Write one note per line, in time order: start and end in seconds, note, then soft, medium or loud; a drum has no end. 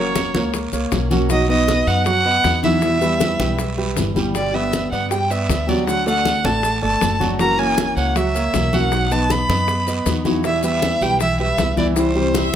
0.00 0.29 F#1 medium
0.00 0.53 F#3 soft
0.00 0.28 A#3 medium
0.00 0.53 A#3 medium
0.00 0.53 C#4 medium
0.00 0.54 F#4 medium
0.00 0.28 A#4 medium
0.00 0.28 C#5 medium
0.00 0.51 C#5 medium
0.16 high bongo medium
0.16 high conga medium
0.16 short guiro medium
0.16 maracas medium
0.34 0.70 C#2 medium
0.34 0.66 A#3 medium
0.34 0.66 A#4 medium
0.34 0.66 C#5 medium
0.34 high conga medium
0.34 short guiro medium
0.34 maracas soft
0.53 muted nylon-string guitar stroke medium
0.53 high bongo medium
0.53 high conga soft
0.53 long guiro medium
0.53 maracas medium
0.73 0.90 C2 medium
0.73 1.04 A#3 medium
0.73 1.04 A#4 medium
0.73 1.04 C#5 medium
0.73 high bongo soft
0.73 high conga soft
0.73 maracas medium
0.91 1.81 B1 medium
0.91 1.10 F#3 soft
0.91 1.10 A#3 medium
0.91 1.10 C#4 medium
0.91 1.09 F#4 medium
0.91 high bongo medium
0.91 low bongo medium
0.91 high conga medium
0.91 short guiro medium
0.91 maracas medium
1.10 1.27 F#3 medium
1.10 1.29 F#3 medium
1.10 1.30 A#3 medium
1.10 1.29 C#4 medium
1.10 1.29 F#4 medium
1.10 1.27 F#4 medium
1.10 1.27 F#5 medium
1.10 high bongo soft
1.10 high conga medium
1.10 short guiro medium
1.10 maracas soft
1.29 1.48 B2 medium
1.29 1.48 F#3 medium
1.29 1.46 F#3 medium
1.29 1.48 B3 medium
1.29 1.48 D#4 medium
1.29 1.46 F#4 medium
1.29 1.47 F#4 medium
1.29 1.48 D#5 medium
1.29 1.46 F#5 medium
1.29 high bongo medium
1.29 high conga soft
1.29 long guiro medium
1.29 maracas medium
1.48 2.05 F#3 medium
1.48 1.80 B3 medium
1.48 2.06 B3 medium
1.48 2.05 D#4 medium
1.48 2.05 F#4 medium
1.48 1.81 B4 medium
1.48 1.81 D#5 medium
1.48 1.89 D#5 medium
1.48 high conga soft
1.68 high bongo medium
1.68 high conga medium
1.68 short guiro medium
1.68 maracas medium
1.87 2.40 F#2 medium
1.87 2.03 B3 medium
1.87 2.03 B4 medium
1.87 2.03 D#5 medium
1.87 2.06 F#5 loud
1.87 high conga soft
1.87 short guiro medium
1.87 maracas soft
2.06 2.22 F#3 medium
2.06 2.22 F#4 medium
2.06 2.22 F#5 medium
2.06 2.60 F#5 loud
2.06 muted nylon-string guitar stroke medium
2.06 high bongo medium
2.06 high conga soft
2.06 long guiro medium
2.06 maracas medium
2.25 2.56 B3 medium
2.25 2.57 B4 medium
2.25 2.57 D#5 medium
2.25 high conga soft
2.43 3.34 E2 medium
2.43 2.62 F#3 soft
2.43 2.63 B3 soft
2.43 2.62 D#4 medium
2.43 2.61 F#4 medium
2.43 high bongo medium
2.43 low bongo medium
2.43 high conga medium
2.43 short guiro medium
2.43 maracas medium
2.62 2.94 E3 medium
2.62 2.82 F#3 medium
2.62 2.82 B3 medium
2.62 2.82 D#4 medium
2.62 2.95 E4 medium
2.62 2.81 F#4 medium
2.62 2.95 E5 medium
2.62 3.93 E5 loud
2.62 high conga medium
2.62 short guiro medium
2.62 maracas soft
2.82 3.00 B2 medium
2.82 3.01 E3 medium
2.82 3.01 G3 medium
2.82 3.00 B3 medium
2.82 2.99 E4 medium
2.82 high bongo medium
2.82 high conga soft
2.82 long guiro medium
2.82 maracas medium
3.01 3.57 E3 medium
3.01 3.33 G3 medium
3.01 3.59 G3 medium
3.01 3.59 B3 medium
3.01 3.58 E4 medium
3.01 3.33 G4 medium
3.01 3.33 B4 medium
3.01 high bongo soft
3.01 high conga soft
3.01 maracas medium
3.20 high bongo medium
3.20 high conga medium
3.20 short guiro medium
3.20 maracas medium
3.39 3.93 B1 medium
3.39 3.71 G3 medium
3.39 3.71 G4 medium
3.39 3.71 B4 medium
3.39 high conga medium
3.39 short guiro medium
3.39 maracas soft
3.58 muted nylon-string guitar stroke medium
3.58 high bongo medium
3.58 high conga soft
3.58 long guiro medium
3.58 maracas medium
3.77 4.09 G3 medium
3.77 4.09 G4 medium
3.77 4.09 B4 medium
3.77 high bongo soft
3.77 high conga soft
3.96 4.86 G1 medium
3.96 4.15 E3 soft
3.96 4.15 G3 soft
3.96 4.14 B3 soft
3.96 4.14 E4 soft
3.96 high bongo medium
3.96 low bongo medium
3.96 high conga medium
3.96 short guiro medium
3.96 maracas medium
4.15 4.35 E3 medium
4.15 4.31 G3 medium
4.15 4.34 G3 medium
4.15 4.34 B3 medium
4.15 4.34 E4 medium
4.15 4.32 G4 medium
4.15 4.32 G5 medium
4.15 high bongo soft
4.15 high conga medium
4.15 short guiro medium
4.15 maracas soft
4.34 4.53 B2 medium
4.34 4.53 D3 medium
4.34 4.50 G3 medium
4.34 4.53 G3 medium
4.34 4.53 B3 medium
4.34 4.51 G4 medium
4.34 4.52 G4 medium
4.34 4.55 D5 medium
4.34 4.51 G5 medium
4.34 high bongo medium
4.34 high conga soft
4.34 long guiro medium
4.34 maracas medium
4.53 5.09 D3 medium
4.53 5.10 G3 soft
4.53 5.10 B3 medium
4.53 4.85 B3 medium
4.53 5.10 G4 medium
4.53 4.85 B4 medium
4.53 4.86 D5 medium
4.53 4.92 E5 medium
4.53 high conga soft
4.73 high bongo medium
4.73 high conga medium
4.73 short guiro medium
4.73 maracas medium
4.92 5.45 G2 medium
4.92 5.08 B3 medium
4.92 5.08 B4 medium
4.92 5.08 D5 medium
4.92 5.10 F#5 medium
4.92 high conga soft
4.92 short guiro medium
4.92 maracas soft
5.10 5.27 G3 medium
5.10 5.27 G4 medium
5.10 5.32 G5 medium
5.10 5.27 G5 medium
5.10 muted nylon-string guitar stroke medium
5.10 high bongo medium
5.10 high conga soft
5.10 long guiro medium
5.10 maracas medium
5.30 5.61 B3 medium
5.30 5.62 B4 medium
5.30 5.62 D5 medium
5.30 5.70 E5 medium
5.30 high conga soft
5.30 maracas medium
5.48 6.39 D2 medium
5.48 5.67 D3 soft
5.48 5.67 G3 soft
5.48 5.67 B3 medium
5.48 5.66 G4 medium
5.48 high bongo medium
5.48 low bongo medium
5.48 high conga medium
5.48 short guiro medium
5.48 maracas medium
5.67 5.86 D3 medium
5.67 5.99 F#3 medium
5.67 5.87 G3 medium
5.67 5.87 B3 medium
5.67 6.00 F#4 medium
5.67 5.86 G4 medium
5.67 5.87 D5 medium
5.67 6.00 F#5 medium
5.67 high conga medium
5.67 short guiro medium
5.67 maracas soft
5.87 6.05 D3 medium
5.87 6.06 A3 medium
5.87 6.06 D4 medium
5.87 6.05 F#4 medium
5.87 6.05 F#5 medium
5.87 high bongo medium
5.87 high conga soft
5.87 long guiro medium
5.87 maracas medium
6.06 6.38 A3 medium
6.06 6.63 A3 medium
6.06 6.63 D4 medium
6.06 6.64 F#4 medium
6.06 6.38 A4 medium
6.06 6.38 D5 medium
6.06 6.47 F#5 medium
6.06 high bongo soft
6.06 high conga soft
6.06 maracas medium
6.25 high bongo medium
6.25 high conga medium
6.25 short guiro medium
6.25 maracas medium
6.44 6.80 A1 medium
6.44 6.76 A3 medium
6.44 6.76 A4 medium
6.44 6.76 D5 medium
6.44 6.83 A5 loud
6.44 high conga medium
6.44 short guiro medium
6.44 maracas soft
6.63 muted nylon-string guitar stroke medium
6.63 high bongo medium
6.63 high conga soft
6.63 long guiro medium
6.63 maracas medium
6.82 7.00 G1 medium
6.82 7.14 A3 medium
6.82 7.14 A4 medium
6.82 7.14 D5 medium
6.82 7.18 A5 medium
6.82 high bongo soft
6.82 high conga soft
7.01 7.91 F#1 medium
7.01 7.20 D3 soft
7.01 7.20 A3 soft
7.01 7.20 D4 soft
7.01 7.18 F#4 medium
7.01 high bongo medium
7.01 low bongo medium
7.01 high conga medium
7.01 short guiro medium
7.01 maracas medium
7.20 7.36 F#3 medium
7.20 7.39 A3 medium
7.20 7.39 D4 medium
7.20 7.38 F#4 medium
7.20 7.36 F#4 medium
7.20 7.36 F#5 medium
7.20 high bongo soft
7.20 high conga medium
7.20 short guiro medium
7.20 maracas soft
7.39 7.57 C#3 medium
7.39 7.58 E3 medium
7.39 7.55 F#3 medium
7.39 7.58 A#3 medium
7.39 7.57 C#4 medium
7.39 7.55 F#4 medium
7.39 7.56 F#4 medium
7.39 7.55 F#5 medium
7.39 7.60 A#5 loud
7.39 high bongo medium
7.39 high conga soft
7.39 long guiro medium
7.39 maracas medium
7.58 8.14 E3 soft
7.58 7.90 A#3 medium
7.58 8.14 A#3 soft
7.58 8.15 C#4 medium
7.58 8.16 F#4 medium
7.58 7.90 A#4 medium
7.58 7.90 C#5 medium
7.58 7.97 G#5 loud
7.58 high conga soft
7.78 high bongo medium
7.78 high conga medium
7.78 short guiro medium
7.78 maracas medium
7.96 8.50 C#2 medium
7.96 8.12 A#3 medium
7.96 8.12 A#4 medium
7.96 8.12 C#5 medium
7.96 8.18 F#5 medium
7.96 high conga soft
7.96 short guiro medium
7.96 maracas soft
8.15 8.31 F#3 medium
8.15 8.31 F#4 medium
8.15 8.75 E5 medium
8.15 8.32 F#5 medium
8.15 muted nylon-string guitar stroke medium
8.15 high bongo medium
8.15 high conga soft
8.15 long guiro medium
8.15 maracas medium
8.35 8.66 A#3 medium
8.35 8.66 A#4 medium
8.35 8.66 C#5 medium
8.35 high conga soft
8.35 maracas medium
8.54 9.43 B1 medium
8.54 8.72 E3 soft
8.54 8.72 A#3 soft
8.54 8.72 C#4 medium
8.54 8.71 F#4 soft
8.54 high bongo medium
8.54 low bongo medium
8.54 high conga medium
8.54 short guiro medium
8.54 maracas medium
8.73 8.92 E3 medium
8.73 9.04 F#3 medium
8.73 8.92 A#3 medium
8.73 8.92 C#4 medium
8.73 8.91 F#4 medium
8.73 9.04 F#4 medium
8.73 9.04 F#5 medium
8.73 9.13 F#5 medium
8.73 high conga medium
8.73 short guiro medium
8.73 maracas soft
8.92 9.10 B2 medium
8.92 9.10 F#3 medium
8.92 9.11 B3 medium
8.92 9.10 D#4 medium
8.92 9.09 F#4 medium
8.92 high bongo medium
8.92 high conga soft
8.92 long guiro medium
8.92 maracas medium
9.11 9.67 F#3 soft
9.11 9.42 B3 medium
9.11 9.68 B3 medium
9.11 9.68 D#4 medium
9.11 9.67 F#4 medium
9.11 9.42 B4 medium
9.11 9.43 D#5 medium
9.11 9.33 A5 medium
9.11 high bongo soft
9.11 high conga soft
9.11 maracas medium
9.30 10.07 B5 medium
9.30 high bongo medium
9.30 high conga medium
9.30 short guiro medium
9.30 maracas medium
9.49 10.02 F#2 medium
9.49 9.80 B3 medium
9.49 9.80 B4 medium
9.49 9.81 D#5 medium
9.49 high conga medium
9.49 short guiro medium
9.49 maracas soft
9.68 muted nylon-string guitar stroke medium
9.68 high bongo medium
9.68 high conga soft
9.68 long guiro medium
9.68 maracas medium
9.87 10.19 B3 medium
9.87 10.19 B4 medium
9.87 10.19 D#5 medium
9.87 high bongo soft
9.87 high conga soft
9.87 maracas medium
10.06 10.95 E2 medium
10.06 10.25 F#3 soft
10.06 10.25 B3 medium
10.06 10.25 D#4 soft
10.06 10.24 F#4 soft
10.06 high bongo medium
10.06 low bongo medium
10.06 high conga medium
10.06 short guiro medium
10.06 maracas medium
10.25 10.41 E3 medium
10.25 10.44 F#3 medium
10.25 10.44 B3 medium
10.25 10.44 D#4 medium
10.25 10.41 E4 medium
10.25 10.43 F#4 medium
10.25 10.41 E5 medium
10.25 high bongo soft
10.25 high conga medium
10.25 short guiro medium
10.25 maracas soft
10.44 10.62 B2 medium
10.44 10.63 E3 medium
10.44 10.60 E3 medium
10.44 10.63 G3 medium
10.44 10.62 B3 medium
10.44 10.60 E4 medium
10.44 10.62 E4 medium
10.44 10.60 E5 medium
10.44 10.63 E5 medium
10.44 high bongo medium
10.44 high conga soft
10.44 long guiro medium
10.44 maracas medium
10.63 11.20 E3 soft
10.63 10.95 G3 medium
10.63 11.20 G3 medium
10.63 11.20 B3 medium
10.63 11.20 E4 medium
10.63 10.95 G4 medium
10.63 10.95 B4 medium
10.63 11.04 E5 medium
10.63 high conga soft
10.63 maracas medium
10.82 high bongo medium
10.82 high conga medium
10.82 short guiro medium
10.82 maracas medium
11.01 11.55 B1 medium
11.01 11.17 G3 medium
11.01 11.17 G4 medium
11.01 11.17 B4 medium
11.01 11.21 G5 loud
11.01 high conga soft
11.01 short guiro medium
11.01 maracas soft
11.20 11.36 E3 medium
11.20 11.36 E4 medium
11.20 11.36 E5 medium
11.20 11.39 E5 medium
11.20 muted nylon-string guitar stroke medium
11.20 high bongo medium
11.20 high conga soft
11.20 long guiro medium
11.20 maracas medium
11.39 11.71 G3 medium
11.39 11.71 G4 medium
11.39 11.71 B4 medium
11.39 11.75 E5 medium
11.39 high conga soft
11.57 12.48 C2 medium
11.57 11.76 E3 soft
11.57 11.76 G3 soft
11.57 11.76 B3 soft
11.57 11.75 E4 medium
11.57 high bongo medium
11.57 low bongo medium
11.57 high conga medium
11.57 short guiro medium
11.57 maracas medium
11.76 12.08 E3 medium
11.76 11.95 E3 medium
11.76 11.95 G3 medium
11.76 11.96 B3 medium
11.76 11.95 E4 medium
11.76 12.09 E4 medium
11.76 11.86 D5 medium
11.76 12.09 E5 medium
11.76 high conga medium
11.76 short guiro medium
11.76 maracas soft
11.95 12.14 C3 medium
11.95 12.14 E3 medium
11.95 12.15 G3 medium
11.95 12.14 C4 medium
11.95 12.13 E4 medium
11.95 12.55 C5 medium
11.95 high bongo medium
11.95 high conga soft
11.95 long guiro medium
11.95 maracas medium
12.15 12.55 E3 medium
12.15 12.47 G3 medium
12.15 12.55 G3 medium
12.15 12.55 C4 medium
12.15 12.55 E4 medium
12.15 12.47 G4 medium
12.15 12.47 C5 medium
12.15 high bongo soft
12.15 high conga soft
12.34 12.55 E5 medium
12.34 high bongo medium
12.34 high conga medium
12.34 short guiro medium
12.34 maracas medium